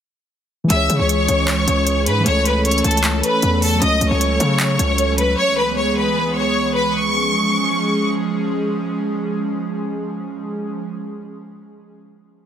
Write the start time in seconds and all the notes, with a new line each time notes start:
0.64 E3 G#3
0.70 C#2 E3 G#3 C#4 G#4 E5 E6, closed hi-hat
0.76 C#5
0.90 C#3, closed hi-hat
0.99 C#2 C#5 C#6
1.09 closed hi-hat
1.28 C#2, closed hi-hat
1.48 clap, closed hi-hat
1.68 C#2, closed hi-hat
1.87 closed hi-hat
2.06 G#2 B4 B5, closed hi-hat
2.20 E3 A3
2.26 C#2 A3 C#4 A4 C#5 C#6, closed hi-hat
2.32 C#5
2.46 B4 B5, closed hi-hat
2.65 C#5 C#6, closed hi-hat
2.71 closed hi-hat
2.78 closed hi-hat
2.84 C#2 A4 A5, closed hi-hat
2.91 closed hi-hat
2.97 closed hi-hat
3.04 clap, closed hi-hat
3.23 B4 B5, closed hi-hat
3.42 E2, closed hi-hat
3.62 A4 A5, open hi-hat
3.75 F#3 A3
3.81 C#2 F#3 C#4 A4 D#5 D#6, closed hi-hat
3.87 C#5
4.01 C#2, closed hi-hat
4.11 C#2 C#5 C#6
4.21 closed hi-hat
4.40 C#3, closed hi-hat
4.60 clap, closed hi-hat
4.79 C#2, closed hi-hat
4.98 closed hi-hat
5.18 B4 B5, closed hi-hat
5.38 C#2 E3 G#3 B3 G#4 C#5 C#6
5.57 B4 B5
5.76 C#5 C#6
5.96 B4 B5
6.35 C#5 C#6
6.74 B4 B5
6.93 F3 G#3 C#4 G#4 C#6